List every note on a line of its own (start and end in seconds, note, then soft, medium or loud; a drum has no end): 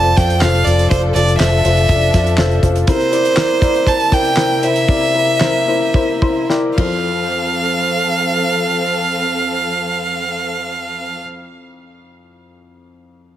0.00 0.12 F1 medium
0.00 2.84 F3 medium
0.00 0.90 C4 medium
0.00 0.17 F4 medium
0.00 0.18 A4 medium
0.00 2.84 A4 medium
0.00 0.18 C5 loud
0.00 0.12 D5 medium
0.00 0.18 A5 medium
0.17 0.43 F2 medium
0.17 0.36 F4 medium
0.17 0.36 A4 soft
0.17 0.37 C5 medium
0.17 0.43 G5 medium
0.17 kick medium
0.17 snare soft
0.17 closed hi-hat medium
0.30 closed hi-hat soft
0.41 0.62 F1 medium
0.41 0.61 F4 medium
0.41 0.61 A4 medium
0.41 0.61 C5 medium
0.41 0.67 F5 medium
0.41 snare medium
0.41 clap medium
0.41 closed hi-hat medium
0.55 closed hi-hat soft
0.65 0.86 F1 medium
0.65 0.85 F4 medium
0.65 0.85 A4 medium
0.65 0.89 D5 medium
0.65 0.85 D5 medium
0.65 closed hi-hat medium
0.79 closed hi-hat soft
0.90 1.11 F1 medium
0.90 2.86 D4 medium
0.90 1.09 F4 medium
0.90 1.10 A4 medium
0.90 1.01 C5 medium
0.90 1.10 D5 medium
0.90 kick loud
0.90 closed hi-hat medium
1.15 1.36 F1 medium
1.15 1.35 F4 medium
1.15 1.35 A4 medium
1.15 1.38 D5 medium
1.15 1.35 D5 medium
1.15 closed hi-hat medium
1.28 closed hi-hat soft
1.39 1.60 F1 medium
1.39 1.59 F4 medium
1.39 1.59 A4 medium
1.39 1.59 C5 medium
1.39 2.59 E5 medium
1.39 snare medium
1.39 clap medium
1.39 closed hi-hat medium
1.65 1.85 F1 medium
1.65 1.84 F4 medium
1.65 1.84 A4 medium
1.65 1.84 C5 medium
1.65 closed hi-hat medium
1.77 closed hi-hat soft
1.89 2.09 F1 medium
1.89 2.08 F4 medium
1.89 2.09 A4 medium
1.89 2.09 D5 medium
1.89 kick medium
1.89 closed hi-hat medium
2.14 2.40 F2 medium
2.14 2.33 F4 medium
2.14 2.33 A4 medium
2.14 2.33 D5 medium
2.14 kick medium
2.14 snare soft
2.14 closed hi-hat medium
2.27 closed hi-hat soft
2.37 2.59 F1 medium
2.37 2.57 F4 medium
2.37 2.58 A4 medium
2.37 2.58 C5 loud
2.37 snare medium
2.37 clap medium
2.37 closed hi-hat medium
2.51 closed hi-hat soft
2.63 2.83 F1 medium
2.63 2.82 F4 medium
2.63 2.82 A4 medium
2.63 2.82 C5 medium
2.63 kick medium
2.63 closed hi-hat medium
2.76 closed hi-hat soft
2.87 6.74 C3 medium
2.87 3.58 C3 medium
2.87 6.74 A#3 medium
2.87 3.06 E4 medium
2.87 6.74 E4 medium
2.87 3.07 A#4 medium
2.87 3.07 C5 medium
2.87 3.90 C5 medium
2.87 kick loud
2.87 closed hi-hat medium
3.00 closed hi-hat soft
3.12 3.31 E4 medium
3.12 3.31 A#4 medium
3.12 3.31 D5 medium
3.12 closed hi-hat medium
3.25 closed hi-hat soft
3.36 3.56 E4 medium
3.36 3.56 A#4 medium
3.36 3.56 D5 medium
3.36 snare medium
3.36 clap medium
3.36 closed hi-hat medium
3.50 closed hi-hat soft
3.61 3.81 E4 medium
3.61 3.81 A#4 medium
3.61 3.81 D5 medium
3.61 kick medium
3.61 closed hi-hat medium
3.74 closed hi-hat soft
3.86 4.06 E4 medium
3.86 4.06 A#4 medium
3.86 4.06 C5 medium
3.86 4.15 A5 medium
3.86 kick medium
3.86 closed hi-hat medium
4.00 closed hi-hat soft
4.11 4.31 E4 medium
4.11 4.31 A#4 soft
4.11 4.31 C5 medium
4.11 4.66 G5 medium
4.11 kick medium
4.11 snare soft
4.11 closed hi-hat medium
4.25 closed hi-hat soft
4.37 4.57 E4 medium
4.37 4.57 A#4 medium
4.37 4.57 C5 medium
4.37 snare medium
4.37 clap medium
4.37 closed hi-hat medium
4.63 4.83 E4 soft
4.63 4.83 A#4 medium
4.63 4.83 C5 medium
4.63 6.50 E5 medium
4.63 closed hi-hat medium
4.76 closed hi-hat soft
4.88 5.64 C3 soft
4.88 5.08 E4 medium
4.88 5.09 A#4 medium
4.88 5.09 D5 medium
4.88 kick loud
5.14 5.35 E4 medium
5.14 5.35 A#4 medium
5.14 5.35 D5 medium
5.40 5.61 E4 medium
5.40 5.61 A#4 medium
5.40 5.62 C5 medium
5.40 snare medium
5.40 clap medium
5.68 5.88 E4 medium
5.68 5.89 A#4 medium
5.68 5.89 C5 medium
5.94 6.15 E4 medium
5.94 6.16 A#4 medium
5.94 6.16 C5 medium
5.94 kick medium
6.22 6.43 E4 medium
6.22 6.43 A#4 medium
6.22 6.44 C5 medium
6.22 6.48 C6 soft
6.22 kick medium
6.50 6.71 E4 medium
6.50 6.71 A#4 medium
6.50 6.72 D5 medium
6.50 6.76 G5 medium
6.50 snare soft
6.76 11.21 F2 medium
6.76 11.22 F3 medium
6.76 11.22 C4 medium
6.76 11.19 F4 medium
6.76 11.21 A4 soft
6.76 11.22 A4 medium
6.76 11.23 C5 medium
6.76 11.22 F5 medium
6.76 kick medium
6.76 ride medium